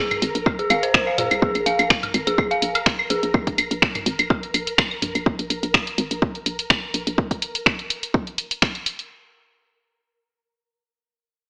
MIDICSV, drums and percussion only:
0, 0, Header, 1, 2, 480
1, 0, Start_track
1, 0, Tempo, 480000
1, 1422, Time_signature, 4, 2, 24, 8
1, 11491, End_track
2, 0, Start_track
2, 0, Title_t, "Drums"
2, 110, Note_on_c, 9, 45, 88
2, 110, Note_on_c, 9, 75, 79
2, 111, Note_on_c, 9, 42, 40
2, 210, Note_off_c, 9, 45, 0
2, 210, Note_off_c, 9, 75, 0
2, 211, Note_off_c, 9, 42, 0
2, 222, Note_on_c, 9, 46, 96
2, 322, Note_off_c, 9, 46, 0
2, 351, Note_on_c, 9, 42, 54
2, 451, Note_off_c, 9, 42, 0
2, 461, Note_on_c, 9, 75, 47
2, 461, Note_on_c, 9, 76, 57
2, 462, Note_on_c, 9, 36, 127
2, 561, Note_off_c, 9, 75, 0
2, 561, Note_off_c, 9, 76, 0
2, 562, Note_off_c, 9, 36, 0
2, 591, Note_on_c, 9, 42, 29
2, 691, Note_off_c, 9, 42, 0
2, 701, Note_on_c, 9, 75, 83
2, 702, Note_on_c, 9, 46, 92
2, 801, Note_off_c, 9, 75, 0
2, 802, Note_off_c, 9, 46, 0
2, 831, Note_on_c, 9, 42, 52
2, 931, Note_off_c, 9, 42, 0
2, 942, Note_on_c, 9, 26, 98
2, 942, Note_on_c, 9, 36, 123
2, 1042, Note_off_c, 9, 26, 0
2, 1042, Note_off_c, 9, 36, 0
2, 1070, Note_on_c, 9, 75, 47
2, 1170, Note_off_c, 9, 75, 0
2, 1182, Note_on_c, 9, 45, 82
2, 1182, Note_on_c, 9, 46, 98
2, 1182, Note_on_c, 9, 75, 63
2, 1282, Note_off_c, 9, 45, 0
2, 1282, Note_off_c, 9, 46, 0
2, 1282, Note_off_c, 9, 75, 0
2, 1310, Note_on_c, 9, 75, 84
2, 1311, Note_on_c, 9, 42, 48
2, 1410, Note_off_c, 9, 75, 0
2, 1411, Note_off_c, 9, 42, 0
2, 1422, Note_on_c, 9, 36, 126
2, 1522, Note_off_c, 9, 36, 0
2, 1551, Note_on_c, 9, 42, 43
2, 1551, Note_on_c, 9, 75, 46
2, 1651, Note_off_c, 9, 42, 0
2, 1651, Note_off_c, 9, 75, 0
2, 1662, Note_on_c, 9, 46, 95
2, 1762, Note_off_c, 9, 46, 0
2, 1791, Note_on_c, 9, 42, 50
2, 1791, Note_on_c, 9, 75, 80
2, 1891, Note_off_c, 9, 42, 0
2, 1891, Note_off_c, 9, 75, 0
2, 1902, Note_on_c, 9, 26, 85
2, 1902, Note_on_c, 9, 36, 122
2, 2002, Note_off_c, 9, 26, 0
2, 2002, Note_off_c, 9, 36, 0
2, 2030, Note_on_c, 9, 45, 85
2, 2030, Note_on_c, 9, 76, 61
2, 2031, Note_on_c, 9, 42, 41
2, 2130, Note_off_c, 9, 45, 0
2, 2130, Note_off_c, 9, 76, 0
2, 2131, Note_off_c, 9, 42, 0
2, 2142, Note_on_c, 9, 46, 91
2, 2142, Note_on_c, 9, 75, 46
2, 2242, Note_off_c, 9, 46, 0
2, 2242, Note_off_c, 9, 75, 0
2, 2271, Note_on_c, 9, 42, 54
2, 2271, Note_on_c, 9, 75, 68
2, 2371, Note_off_c, 9, 42, 0
2, 2371, Note_off_c, 9, 75, 0
2, 2382, Note_on_c, 9, 36, 122
2, 2382, Note_on_c, 9, 75, 78
2, 2482, Note_off_c, 9, 36, 0
2, 2482, Note_off_c, 9, 75, 0
2, 2511, Note_on_c, 9, 42, 29
2, 2611, Note_off_c, 9, 42, 0
2, 2622, Note_on_c, 9, 46, 98
2, 2722, Note_off_c, 9, 46, 0
2, 2751, Note_on_c, 9, 42, 55
2, 2751, Note_on_c, 9, 75, 44
2, 2751, Note_on_c, 9, 76, 61
2, 2851, Note_off_c, 9, 42, 0
2, 2851, Note_off_c, 9, 75, 0
2, 2851, Note_off_c, 9, 76, 0
2, 2862, Note_on_c, 9, 26, 95
2, 2862, Note_on_c, 9, 36, 112
2, 2962, Note_off_c, 9, 26, 0
2, 2962, Note_off_c, 9, 36, 0
2, 2991, Note_on_c, 9, 75, 80
2, 3091, Note_off_c, 9, 75, 0
2, 3102, Note_on_c, 9, 46, 98
2, 3202, Note_off_c, 9, 46, 0
2, 3231, Note_on_c, 9, 42, 50
2, 3331, Note_off_c, 9, 42, 0
2, 3342, Note_on_c, 9, 36, 118
2, 3343, Note_on_c, 9, 75, 45
2, 3442, Note_off_c, 9, 36, 0
2, 3443, Note_off_c, 9, 75, 0
2, 3471, Note_on_c, 9, 36, 58
2, 3471, Note_on_c, 9, 42, 43
2, 3571, Note_off_c, 9, 36, 0
2, 3571, Note_off_c, 9, 42, 0
2, 3582, Note_on_c, 9, 46, 95
2, 3583, Note_on_c, 9, 75, 78
2, 3682, Note_off_c, 9, 46, 0
2, 3683, Note_off_c, 9, 75, 0
2, 3711, Note_on_c, 9, 42, 54
2, 3811, Note_off_c, 9, 42, 0
2, 3822, Note_on_c, 9, 26, 83
2, 3822, Note_on_c, 9, 36, 114
2, 3922, Note_off_c, 9, 26, 0
2, 3922, Note_off_c, 9, 36, 0
2, 3951, Note_on_c, 9, 42, 43
2, 3951, Note_on_c, 9, 45, 92
2, 3951, Note_on_c, 9, 75, 44
2, 4051, Note_off_c, 9, 42, 0
2, 4051, Note_off_c, 9, 45, 0
2, 4051, Note_off_c, 9, 75, 0
2, 4063, Note_on_c, 9, 46, 94
2, 4163, Note_off_c, 9, 46, 0
2, 4191, Note_on_c, 9, 42, 52
2, 4192, Note_on_c, 9, 75, 75
2, 4291, Note_off_c, 9, 42, 0
2, 4292, Note_off_c, 9, 75, 0
2, 4302, Note_on_c, 9, 36, 119
2, 4303, Note_on_c, 9, 76, 59
2, 4402, Note_off_c, 9, 36, 0
2, 4403, Note_off_c, 9, 76, 0
2, 4432, Note_on_c, 9, 42, 30
2, 4531, Note_off_c, 9, 42, 0
2, 4542, Note_on_c, 9, 46, 92
2, 4542, Note_on_c, 9, 75, 46
2, 4642, Note_off_c, 9, 46, 0
2, 4642, Note_off_c, 9, 75, 0
2, 4672, Note_on_c, 9, 42, 55
2, 4772, Note_off_c, 9, 42, 0
2, 4782, Note_on_c, 9, 26, 101
2, 4782, Note_on_c, 9, 36, 116
2, 4783, Note_on_c, 9, 75, 78
2, 4882, Note_off_c, 9, 26, 0
2, 4882, Note_off_c, 9, 36, 0
2, 4883, Note_off_c, 9, 75, 0
2, 4912, Note_on_c, 9, 75, 70
2, 5012, Note_off_c, 9, 75, 0
2, 5022, Note_on_c, 9, 45, 77
2, 5022, Note_on_c, 9, 46, 97
2, 5122, Note_off_c, 9, 45, 0
2, 5122, Note_off_c, 9, 46, 0
2, 5151, Note_on_c, 9, 42, 49
2, 5151, Note_on_c, 9, 75, 44
2, 5251, Note_off_c, 9, 42, 0
2, 5251, Note_off_c, 9, 75, 0
2, 5262, Note_on_c, 9, 36, 110
2, 5362, Note_off_c, 9, 36, 0
2, 5391, Note_on_c, 9, 42, 46
2, 5491, Note_off_c, 9, 42, 0
2, 5502, Note_on_c, 9, 46, 87
2, 5602, Note_off_c, 9, 46, 0
2, 5632, Note_on_c, 9, 42, 53
2, 5732, Note_off_c, 9, 42, 0
2, 5742, Note_on_c, 9, 26, 92
2, 5742, Note_on_c, 9, 36, 113
2, 5842, Note_off_c, 9, 26, 0
2, 5842, Note_off_c, 9, 36, 0
2, 5871, Note_on_c, 9, 42, 45
2, 5971, Note_off_c, 9, 42, 0
2, 5982, Note_on_c, 9, 46, 93
2, 6082, Note_off_c, 9, 46, 0
2, 6111, Note_on_c, 9, 42, 58
2, 6211, Note_off_c, 9, 42, 0
2, 6222, Note_on_c, 9, 36, 118
2, 6322, Note_off_c, 9, 36, 0
2, 6351, Note_on_c, 9, 42, 31
2, 6451, Note_off_c, 9, 42, 0
2, 6462, Note_on_c, 9, 46, 90
2, 6562, Note_off_c, 9, 46, 0
2, 6590, Note_on_c, 9, 42, 60
2, 6690, Note_off_c, 9, 42, 0
2, 6701, Note_on_c, 9, 26, 97
2, 6702, Note_on_c, 9, 36, 105
2, 6801, Note_off_c, 9, 26, 0
2, 6802, Note_off_c, 9, 36, 0
2, 6942, Note_on_c, 9, 46, 92
2, 7041, Note_off_c, 9, 46, 0
2, 7071, Note_on_c, 9, 42, 51
2, 7171, Note_off_c, 9, 42, 0
2, 7181, Note_on_c, 9, 36, 113
2, 7281, Note_off_c, 9, 36, 0
2, 7310, Note_on_c, 9, 36, 54
2, 7311, Note_on_c, 9, 42, 47
2, 7410, Note_off_c, 9, 36, 0
2, 7411, Note_off_c, 9, 42, 0
2, 7422, Note_on_c, 9, 46, 89
2, 7522, Note_off_c, 9, 46, 0
2, 7551, Note_on_c, 9, 42, 55
2, 7651, Note_off_c, 9, 42, 0
2, 7661, Note_on_c, 9, 36, 118
2, 7662, Note_on_c, 9, 26, 86
2, 7761, Note_off_c, 9, 36, 0
2, 7762, Note_off_c, 9, 26, 0
2, 7791, Note_on_c, 9, 46, 37
2, 7891, Note_off_c, 9, 46, 0
2, 7902, Note_on_c, 9, 46, 95
2, 8002, Note_off_c, 9, 46, 0
2, 8030, Note_on_c, 9, 42, 57
2, 8130, Note_off_c, 9, 42, 0
2, 8141, Note_on_c, 9, 36, 119
2, 8241, Note_off_c, 9, 36, 0
2, 8270, Note_on_c, 9, 42, 32
2, 8370, Note_off_c, 9, 42, 0
2, 8381, Note_on_c, 9, 46, 93
2, 8481, Note_off_c, 9, 46, 0
2, 8510, Note_on_c, 9, 42, 58
2, 8610, Note_off_c, 9, 42, 0
2, 8622, Note_on_c, 9, 26, 101
2, 8622, Note_on_c, 9, 36, 116
2, 8721, Note_off_c, 9, 26, 0
2, 8721, Note_off_c, 9, 36, 0
2, 8750, Note_on_c, 9, 42, 31
2, 8850, Note_off_c, 9, 42, 0
2, 8862, Note_on_c, 9, 46, 91
2, 8962, Note_off_c, 9, 46, 0
2, 8990, Note_on_c, 9, 46, 35
2, 9090, Note_off_c, 9, 46, 0
2, 11491, End_track
0, 0, End_of_file